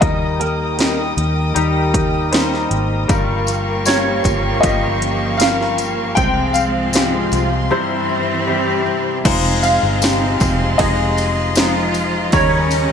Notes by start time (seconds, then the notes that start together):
Already playing: D#4 D#5
0.01 D#2 D#3 G3 D#4 A#4 D#5 G5 D#6, kick, closed hi-hat
0.40 A#3 A#4, closed hi-hat
0.78 G3 D#4 A#4, snare, closed hi-hat
1.17 D#2 G4, closed hi-hat
1.54 D#2 G3 A#3 D#4 G4, closed hi-hat
1.94 D#4, kick, closed hi-hat
2.31 G3 A#3 D#4 C5, snare, closed hi-hat
2.54 snare
2.71 G#1 D#4, closed hi-hat
3.08 G1 G2 F3 G3 A#3 F4 A#4 F5 G5 C#6, kick, closed hi-hat, tambourine, swell
3.47 A#3, closed hi-hat, tambourine
3.85 G3 C#4 F4 A#4 C#5, snare, closed hi-hat, tambourine
4.24 G1 F4, kick, closed hi-hat, tambourine
4.61 G1 G3 A#3 F4 G4 D#5, kick, closed hi-hat, tambourine
5.01 C#4, closed hi-hat
5.37 G3 A#3 F4 A#4 F5, closed hi-hat, tambourine
5.42 snare
5.61 snare
5.78 C#4, closed hi-hat, tambourine
6.15 C2 G#2 C3 F3 G#3 C4 F4 C5 G5 C6, kick, closed hi-hat, tambourine
6.53 G#3 F5, closed hi-hat, tambourine
6.93 G#3 C4 F4 G4, snare, closed hi-hat, tambourine
7.32 C2 F4, closed hi-hat, tambourine
7.70 G2 C3 E3 G3 C4 E4 G4 C5 E5
8.09 E4
8.47 G3 C4 E4 G4
8.86 E4
9.25 F1 C3 G#3 C4 D#4 F4 C5 D#5 F5 C6, kick, crash, ride, tambourine
9.63 F5, ride, tambourine
9.83 G1
10.01 G#3 D#4 F4 G4, snare, ride, tambourine
10.40 F1, kick, ride, tambourine
10.78 F1 G#3 D#4 F4 G#4 D#5, kick, ride, tambourine
11.18 ride, tambourine
11.55 F3 G#3 D#4 F4 C5, snare, ride, tambourine
11.94 ride, tambourine
12.32 D#2 C#3 D#3 G3 C#4 D#4 G4 A#4 C#5 A#5, kick, ride, tambourine
12.71 ride, tambourine